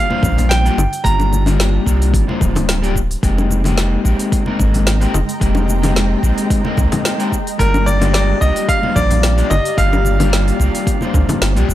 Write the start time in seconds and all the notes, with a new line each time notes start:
Already playing: F5
0.09 G3 A#3 D4 F4 C5, high conga
0.23 A#1, kick, low conga, shaker
0.38 open hi-hat, low conga, shaker
0.49 G5, snare, open hi-hat, shaker
0.64 G3 A#3 D4 F4 G4, open hi-hat, shaker
0.78 G1, low conga, shaker
0.93 open hi-hat, shaker
1.04 G1 G3 A#3 D4 F4 G4 A#5, kick, open hi-hat, shaker
1.20 high bongo, shaker
1.33 high conga, shaker
1.46 G3 A#3 D4 F4 G4, open hi-hat, high bongo, low conga, shaker
1.60 snare, open hi-hat, shaker
1.85 C2 G3 A#3 D4 F4 G4, kick, shaker
2.02 open hi-hat, shaker
2.14 G1, kick, open hi-hat, shaker
2.27 G3 A#3 D4 F4 C5, high conga
2.41 D1, kick, low conga, shaker
2.55 open hi-hat, low conga, shaker
2.69 snare, open hi-hat, shaker
2.82 G3 A#3 D4 F4 G4, open hi-hat, shaker
2.96 kick, shaker
3.11 open hi-hat, shaker
3.23 F1 G#3 A#3 C4 D#4 G4 D#5 G5 A#5, kick, open hi-hat, shaker
3.38 high bongo, shaker
3.50 high conga, shaker
3.64 G#3 A#3 C4 D#4 G4, open hi-hat, high bongo, low conga, shaker
3.78 snare, open hi-hat, shaker
4.04 A#1 G#3 A#3 C4 D#4 G4, kick, shaker
4.19 open hi-hat, shaker
4.32 kick, open hi-hat, shaker
4.46 G#3 A#3 C4 D#4 A#4, high conga
4.59 G#1, kick, low conga, shaker
4.74 open hi-hat, low conga, shaker
4.87 snare, open hi-hat, shaker
5.00 G#3 A#3 C4 D#4 G4, open hi-hat, shaker
5.14 F1, low conga, shaker
5.29 open hi-hat, shaker
5.40 F1 G#3 A#3 C4 D#4 G4, kick, open hi-hat, shaker
5.55 high bongo, shaker
5.68 high conga, shaker
5.82 G#3 A#3 C4 D#4 G4, open hi-hat, high bongo, low conga, shaker
5.96 snare, open hi-hat, shaker
6.22 A#1 G#3 A#3 C4 D#4 G4, kick, shaker
6.38 open hi-hat, shaker
6.50 kick, open hi-hat, shaker
6.64 G#3 A#3 C4 D#4 A#4, high conga
6.77 C2, kick, low conga, shaker
6.92 open hi-hat, low conga, shaker
7.05 snare, open hi-hat, shaker
7.18 G#3 A#3 C4 D#4 G4, open hi-hat, shaker
7.32 kick, shaker
7.47 open hi-hat, shaker
7.58 G1 G3 A#3 D4 F4 G4 A#4 D5 F5, kick, open hi-hat, shaker
7.74 high bongo, shaker
7.86 D5, high conga, shaker
8.00 G3 A#3 D4 F4 G4, open hi-hat, high bongo, low conga, shaker
8.14 D5, snare, open hi-hat, shaker
8.40 C2 G3 A#3 D4 F4 G4 D#5, kick, shaker
8.56 open hi-hat, shaker
8.69 F5, kick, open hi-hat, shaker
8.82 G3 A#3 D4 F4 C5, high conga
8.96 A#1 D5, kick, low conga, shaker
9.11 open hi-hat, low conga, shaker
9.23 snare, open hi-hat, shaker
9.36 G3 A#3 D4 F4 G4, open hi-hat, shaker
9.50 G1 D#5, low conga, shaker
9.65 open hi-hat, shaker
9.77 G1 G3 A#3 D4 F4 G4 F5, kick, open hi-hat, shaker
9.93 high bongo, shaker
10.05 high conga, shaker
10.19 G3 A#3 D4 F4 G4, open hi-hat, high bongo, low conga, shaker
10.33 snare, open hi-hat, shaker
10.48 open hi-hat, shaker
10.59 C2 G3 A#3 D4 F4 G4, kick, high conga, shaker
10.75 open hi-hat, shaker
10.87 kick, open hi-hat, shaker
11.01 G3 A#3 D4 F4 C5, high conga, shaker
11.14 D2, kick, low conga, shaker
11.29 open hi-hat, low conga, shaker
11.41 G1, snare, open hi-hat, shaker
11.55 C2 G3 A#3 D4 F4 G4, open hi-hat, shaker
11.69 F1, kick, shaker